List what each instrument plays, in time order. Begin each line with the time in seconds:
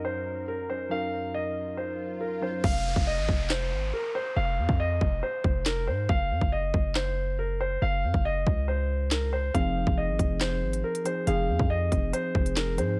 Already playing: analog synth pad F#2 F#3 D#4 A#4, synth keys F#3 C#4 D#4 A#4
0.05 grand piano C5
0.48 grand piano A#4
0.69 synth keys F#3 C#4 D#4 A#4, grand piano C5
0.89 synth keys F#3 C#4 D#4 A#4, grand piano F5, swell
1.34 grand piano D#5
1.77 grand piano C5
2.21 grand piano A#4
2.41 synth keys F#3 C#4 D#4 A#4, grand piano C5
2.64 808-style bass F1, grand piano F5, kick, crash, downlifter
2.96 808-style bass F1, kick
3.07 grand piano D#5
3.18 808-style bass G#1
3.29 808-style bass F1, kick
3.50 grand piano C5, snare, clap
3.72 808-style bass G#1
3.93 grand piano A#4
4.15 grand piano C5
4.36 808-style bass F1, grand piano F5
4.58 808-style bass F2
4.69 808-style bass F2, kick
4.80 grand piano D#5
5.01 808-style bass F1, kick
5.23 grand piano C5
5.44 808-style bass F1, kick
5.66 grand piano A#4, snare, clap
5.87 808-style bass G#2, grand piano C5
6.09 808-style bass F#1, grand piano F5, kick
6.31 808-style bass F#2
6.41 808-style bass F#1, kick
6.52 grand piano D#5
6.74 808-style bass F#1, kick
6.95 grand piano C5, snare, clap
7.39 grand piano A#4
7.61 grand piano C5
7.82 808-style bass F#1, grand piano F5
8.03 808-style bass F#2
8.14 808-style bass F#1, kick
8.25 grand piano D#5
8.47 808-style bass C#2, kick
8.68 grand piano C5
9.11 grand piano A#4, snare, clap
9.33 grand piano C5
9.54 808-style bass F1, synth keys F3 C4 D#4 G#4, grand piano F5, kick, closed hi-hat
9.87 808-style bass F1, kick
9.98 grand piano D#5
10.08 808-style bass G#1
10.19 808-style bass F1, kick, closed hi-hat
10.41 grand piano C5, snare, clap, closed hi-hat
10.62 808-style bass G#1
10.73 closed hi-hat
10.84 grand piano A#4
10.95 closed hi-hat
11.04 synth keys F3 C4 D#4 G#4, grand piano C5, closed hi-hat
11.26 808-style bass F1, synth keys F3 C4 D#4 G#4, grand piano F5, closed hi-hat
11.49 808-style bass F2
11.59 808-style bass F2, kick
11.70 grand piano D#5
11.92 808-style bass F1, kick, closed hi-hat
12.13 grand piano C5, closed hi-hat
12.35 808-style bass F1, kick
12.46 closed hi-hat
12.56 grand piano A#4, snare, clap, closed hi-hat
12.77 808-style bass G#2, synth keys F3 C4 D#4 G#4, grand piano C5, closed hi-hat